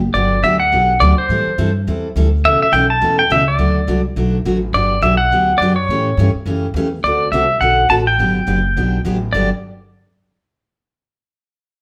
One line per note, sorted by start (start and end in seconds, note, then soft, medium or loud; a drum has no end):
0.00 0.14 F#1 loud
0.14 0.42 G1 medium
0.14 0.34 D3 medium
0.14 0.34 F#3 medium
0.14 0.35 B3 medium
0.14 0.35 D4 medium
0.14 0.35 G4 medium
0.14 0.44 D5 medium
0.43 0.71 D2 medium
0.43 0.54 D3 medium
0.43 0.55 F#3 medium
0.43 0.55 B3 medium
0.43 0.55 D4 medium
0.43 0.55 G4 medium
0.43 0.59 E5 medium
0.60 1.02 F#5 loud
0.72 1.00 B1 medium
0.72 0.92 D3 medium
0.72 0.92 F#3 medium
0.72 0.92 B3 medium
0.72 0.92 D4 medium
0.72 0.92 G4 medium
1.00 1.17 D2 medium
1.00 1.12 D3 medium
1.00 1.12 F#3 medium
1.00 1.12 B3 medium
1.00 1.12 D4 medium
1.00 1.12 G4 medium
1.00 1.18 D5 medium
1.18 1.72 C5 medium
1.18 muted upright bass stroke soft
1.29 1.45 A2 medium
1.29 1.49 E3 medium
1.29 1.49 G3 medium
1.29 1.49 C4 medium
1.29 1.50 E4 medium
1.29 1.50 A4 medium
1.46 muted upright bass stroke soft
1.58 1.86 G2 medium
1.58 1.69 E3 medium
1.58 1.69 G3 medium
1.58 1.70 C4 medium
1.58 1.69 E4 medium
1.58 1.70 A4 medium
1.87 2.15 E2 medium
1.87 2.07 E3 medium
1.87 2.07 G3 medium
1.87 2.07 C4 medium
1.87 2.07 E4 medium
1.87 2.07 A4 medium
2.16 2.44 D2 medium
2.16 2.27 E3 medium
2.16 2.27 G3 medium
2.16 2.27 C4 medium
2.16 2.27 E4 medium
2.16 2.27 A4 medium
2.45 2.61 C#2 medium
2.45 2.64 B2 medium
2.45 2.64 E3 medium
2.45 2.64 A3 medium
2.45 2.64 C#4 medium
2.45 2.64 A4 medium
2.45 2.61 E5 loud
2.62 2.74 E5 medium
2.62 muted upright bass stroke soft
2.72 3.01 B1 medium
2.72 2.84 B2 medium
2.72 2.84 E3 medium
2.72 2.84 A3 medium
2.72 2.84 C#4 medium
2.72 2.85 A4 medium
2.72 2.90 G5 loud
2.90 3.17 A5 loud
3.01 3.29 E2 medium
3.01 3.21 B2 medium
3.01 3.21 E3 medium
3.01 3.21 A3 medium
3.01 3.21 C#4 medium
3.01 3.21 A4 medium
3.19 3.31 G5 medium
3.30 3.58 C#2 medium
3.30 3.41 B2 medium
3.30 3.41 E3 medium
3.30 3.42 A3 medium
3.30 3.42 C#4 medium
3.30 3.42 A4 medium
3.30 3.49 E5 medium
3.48 4.01 D5 medium
3.58 3.87 D2 medium
3.58 3.78 D3 medium
3.58 3.78 F#3 medium
3.58 3.79 A3 medium
3.58 3.78 D4 medium
3.58 3.79 F#4 medium
3.87 4.16 C2 medium
3.87 3.99 D3 medium
3.87 3.99 F#3 medium
3.87 3.99 A3 medium
3.87 3.99 D4 medium
3.87 3.99 F#4 medium
4.16 4.44 B1 medium
4.16 4.36 D3 soft
4.16 4.36 F#3 medium
4.16 4.36 A3 medium
4.16 4.36 D4 medium
4.16 4.36 F#4 medium
4.45 4.72 A1 medium
4.45 4.56 D3 medium
4.45 4.57 F#3 medium
4.45 4.57 A3 medium
4.45 4.57 D4 medium
4.45 4.57 F#4 medium
4.73 5.01 G1 medium
4.73 4.94 D3 medium
4.73 4.94 F#3 medium
4.73 4.94 B3 medium
4.73 4.94 D4 medium
4.73 4.94 G4 medium
4.73 5.01 D5 loud
5.02 5.30 B1 medium
5.02 5.13 D3 medium
5.02 5.14 F#3 medium
5.02 5.14 B3 medium
5.02 5.14 D4 medium
5.02 5.14 G4 medium
5.02 5.17 E5 medium
5.17 5.60 F#5 loud
5.31 5.59 D2 medium
5.31 5.51 D3 medium
5.31 5.51 F#3 medium
5.31 5.52 B3 medium
5.31 5.51 D4 medium
5.31 5.52 G4 medium
5.58 5.88 F#2 loud
5.58 5.72 D3 medium
5.58 5.75 D5 loud
5.62 5.72 F#3 medium
5.62 5.72 B3 medium
5.62 5.72 D4 medium
5.62 5.72 G4 medium
5.76 6.30 C#5 medium
5.88 6.16 A2 medium
5.88 6.09 C#3 medium
5.88 6.09 E3 medium
5.88 6.09 A3 medium
5.88 6.09 C#4 medium
5.88 6.09 G4 medium
6.17 6.33 G2 medium
6.17 6.29 C#3 medium
6.17 6.29 E3 medium
6.17 6.29 A3 medium
6.17 6.29 C#4 medium
6.17 6.30 G4 medium
6.35 muted upright bass stroke soft
6.46 6.73 F#2 medium
6.46 6.66 C#3 medium
6.46 6.66 E3 medium
6.46 6.66 A3 medium
6.46 6.66 C#4 medium
6.46 6.66 G4 medium
6.74 7.02 E2 medium
6.74 6.86 C#3 medium
6.74 6.86 E3 medium
6.74 6.87 A3 medium
6.74 6.87 C#4 medium
6.74 6.87 G4 medium
7.03 7.31 D2 medium
7.03 7.24 D3 medium
7.03 7.24 A3 medium
7.03 7.24 C4 medium
7.03 7.24 F#4 medium
7.03 7.25 A4 medium
7.03 7.33 D5 medium
7.32 7.60 C2 medium
7.32 7.43 D3 medium
7.32 7.44 A3 medium
7.32 7.44 C4 medium
7.32 7.44 F#4 medium
7.32 7.44 A4 medium
7.32 7.62 E5 medium
7.61 7.89 B1 medium
7.61 7.81 D3 medium
7.61 7.81 A3 medium
7.61 7.81 C4 medium
7.61 7.81 F#4 medium
7.61 7.81 A4 medium
7.61 7.88 F#5 medium
7.89 8.18 A1 medium
7.89 8.00 D3 medium
7.89 8.01 A3 medium
7.89 8.01 C4 medium
7.89 8.01 F#4 medium
7.89 8.01 A4 medium
7.89 7.95 A5 loud
8.07 9.01 G5 medium
8.19 8.46 G1 medium
8.19 8.38 D3 medium
8.19 8.39 F#3 medium
8.19 8.38 B3 medium
8.19 8.38 D4 medium
8.19 8.39 G4 medium
8.47 8.75 F#1 medium
8.47 8.58 D3 medium
8.47 8.58 F#3 medium
8.47 8.58 B3 medium
8.47 8.58 D4 medium
8.47 8.58 G4 medium
8.76 9.04 B1 medium
8.76 8.96 D3 medium
8.76 8.96 F#3 medium
8.76 8.96 B3 medium
8.76 8.96 D4 medium
8.76 8.96 G4 medium
9.05 9.32 A1 medium
9.05 9.16 D3 medium
9.05 9.16 F#3 medium
9.05 9.16 B3 medium
9.05 9.16 D4 medium
9.05 9.16 G4 medium
9.33 9.50 G1 medium
9.33 9.48 G2 medium
9.33 9.48 D3 medium
9.33 9.48 F#3 medium
9.33 9.48 B3 medium
9.33 9.48 D4 medium
9.33 9.48 G4 medium
9.33 9.49 D5 medium